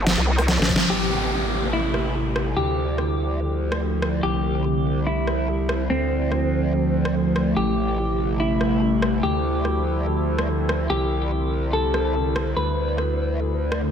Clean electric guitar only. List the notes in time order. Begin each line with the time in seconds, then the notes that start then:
0.90 G4
1.73 E4
2.57 G4
4.23 G4
5.07 E4
5.90 C4
7.57 G4
8.40 E4
9.23 G4
10.90 G4
11.73 A4
12.57 B4